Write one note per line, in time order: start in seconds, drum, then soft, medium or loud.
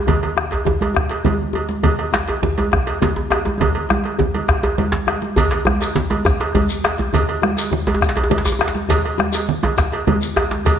0.07 bombo rim soft
0.07 bombo low medium
0.07 cowbell medium
0.07 djembe slap soft
0.07 djembe tone medium
0.07 djembe bass medium
0.07 low conga medium
0.23 bombo rim soft
0.23 cowbell soft
0.37 bombo rim medium
0.37 djembe slap soft
0.37 djembe tone medium
0.51 cowbell soft
0.51 djembe slap medium
0.51 djembe tone medium
0.65 djembe slap soft
0.65 high conga soft
0.65 djembe tone medium
0.65 djembe bass medium
0.65 low conga medium
0.81 bombo rim soft
0.81 cowbell soft
0.81 high conga medium
0.81 djembe tone medium
0.94 bombo rim medium
0.94 bombo low medium
0.94 djembe tone medium
1.09 cowbell soft
1.09 djembe slap medium
1.25 cowbell soft
1.25 high conga medium
1.25 djembe tone medium
1.25 djembe bass medium
1.25 low conga medium
1.39 djembe slap soft
1.53 cowbell soft
1.53 djembe slap soft
1.53 djembe tone medium
1.69 djembe slap medium
1.69 high conga medium
1.83 bombo rim soft
1.83 bombo low medium
1.83 cowbell medium
1.83 djembe slap soft
1.83 djembe bass medium
1.83 low conga medium
1.99 bombo rim soft
1.99 cowbell soft
2.13 bombo rim medium
2.13 djembe slap soft
2.13 djembe slap loud
2.13 djembe tone medium
2.13 high conga medium
2.28 cowbell soft
2.28 djembe slap medium
2.28 djembe tone medium
2.43 djembe slap soft
2.43 high conga soft
2.43 djembe tone medium
2.43 djembe bass medium
2.43 low conga medium
2.58 bombo rim soft
2.58 cowbell soft
2.58 high conga medium
2.58 djembe tone medium
2.72 bombo rim loud
2.72 bombo low medium
2.72 djembe tone medium
2.72 djembe bass medium
2.87 cowbell soft
2.87 djembe slap medium
3.02 cowbell soft
3.02 djembe slap medium
3.02 high conga medium
3.02 djembe bass medium
3.02 low conga medium
3.16 djembe slap soft
3.16 djembe tone medium
3.30 bombo rim medium
3.30 cowbell soft
3.30 djembe slap soft
3.30 djembe tone medium
3.45 djembe slap medium
3.45 djembe tone medium
3.45 high conga medium
3.60 bombo low medium
3.60 cowbell medium
3.60 djembe slap soft
3.60 djembe tone medium
3.60 djembe bass medium
3.60 low conga medium
3.75 cowbell soft
3.75 high conga soft
3.89 bombo rim medium
3.89 djembe tone medium
3.89 high conga medium
4.04 bombo rim soft
4.04 cowbell soft
4.04 djembe slap soft
4.04 high conga soft
4.19 djembe tone medium
4.19 high conga soft
4.19 djembe bass medium
4.19 low conga medium
4.33 cowbell soft
4.33 djembe slap soft
4.33 high conga medium
4.48 bombo rim loud
4.48 bombo low loud
4.48 djembe slap soft
4.48 djembe tone medium
4.63 cowbell soft
4.63 djembe slap medium
4.63 high conga soft
4.63 djembe tone medium
4.78 bombo rim soft
4.78 cowbell soft
4.78 djembe slap soft
4.78 high conga medium
4.78 djembe bass medium
4.78 low conga medium
4.92 djembe slap loud
4.92 djembe slap soft
4.92 low conga soft
5.07 bombo rim medium
5.07 cowbell soft
5.07 djembe tone medium
5.07 high conga soft
5.22 djembe slap medium
5.22 high conga medium
5.36 bombo rim soft
5.36 bombo low medium
5.36 cowbell medium
5.36 djembe slap soft
5.36 djembe bass medium
5.36 low conga medium
5.36 shekere medium
5.51 bombo rim soft
5.51 cowbell medium
5.51 djembe slap medium
5.65 bombo rim loud
5.65 djembe slap soft
5.65 djembe tone medium
5.65 high conga medium
5.65 djembe bass medium
5.80 cowbell medium
5.80 djembe slap medium
5.80 shekere soft
5.95 djembe slap soft
5.95 djembe slap medium
5.95 high conga soft
5.95 low conga medium
5.95 djembe bass medium
6.10 bombo rim soft
6.10 cowbell medium
6.10 djembe tone medium
6.10 high conga medium
6.25 bombo rim loud
6.25 bombo low loud
6.25 djembe tone medium
6.25 djembe bass loud
6.25 shekere medium
6.40 cowbell medium
6.40 djembe slap medium
6.55 cowbell medium
6.55 high conga medium
6.55 djembe bass medium
6.55 low conga medium
6.69 djembe slap soft
6.69 shekere soft
6.84 bombo rim loud
6.84 cowbell soft
6.84 djembe slap soft
6.84 djembe slap medium
6.84 djembe tone medium
6.98 djembe slap medium
6.98 djembe tone medium
6.98 high conga medium
7.13 bombo rim soft
7.13 bombo low loud
7.13 cowbell medium
7.13 djembe slap soft
7.13 djembe bass medium
7.13 low conga medium
7.13 shekere medium
7.29 bombo rim soft
7.29 cowbell soft
7.42 bombo rim loud
7.42 djembe slap soft
7.42 djembe tone medium
7.42 high conga medium
7.57 cowbell soft
7.57 djembe slap medium
7.57 shekere medium
7.71 djembe slap soft
7.71 high conga soft
7.71 djembe bass medium
7.71 low conga medium
7.87 bombo rim soft
7.87 cowbell soft
7.87 djembe tone loud
7.87 high conga medium
7.94 djembe tone medium
8.01 bombo rim medium
8.01 bombo low medium
8.01 djembe tone medium
8.01 shekere medium
8.09 djembe slap medium
8.16 cowbell medium
8.16 djembe slap medium
8.16 djembe tone loud
8.24 djembe tone medium
8.30 cowbell soft
8.30 high conga medium
8.30 djembe bass medium
8.30 low conga medium
8.38 djembe slap medium
8.45 djembe slap soft
8.45 djembe tone loud
8.45 shekere soft
8.52 djembe tone medium
8.59 bombo rim medium
8.59 cowbell soft
8.59 djembe slap soft
8.59 djembe tone medium
8.68 djembe slap medium
8.75 djembe slap medium
8.75 high conga medium
8.89 bombo rim soft
8.89 bombo low medium
8.89 cowbell medium
8.89 djembe slap soft
8.89 djembe bass medium
8.89 low conga medium
8.89 shekere medium
9.05 bombo rim soft
9.05 cowbell soft
9.18 bombo rim medium
9.18 djembe slap soft
9.18 djembe tone medium
9.18 high conga medium
9.33 cowbell soft
9.33 djembe slap medium
9.33 shekere soft
9.48 djembe slap soft
9.48 high conga soft
9.48 low conga medium
9.63 bombo rim soft
9.63 cowbell soft
9.63 high conga medium
9.63 djembe tone loud
9.78 bombo rim medium
9.78 bombo low medium
9.78 djembe slap medium
9.78 djembe tone medium
9.78 shekere medium
9.92 cowbell soft
9.92 djembe slap medium
10.07 cowbell medium
10.07 high conga medium
10.07 djembe bass medium
10.07 low conga medium
10.22 djembe slap soft
10.22 shekere soft
10.36 bombo rim medium
10.36 cowbell medium
10.36 djembe slap soft
10.36 djembe tone loud
10.36 djembe tone medium
10.51 djembe slap soft
10.51 djembe slap medium
10.51 high conga medium
10.65 bombo rim soft
10.65 bombo low medium
10.65 cowbell medium
10.65 djembe slap soft
10.65 djembe bass medium
10.65 low conga medium
10.65 shekere medium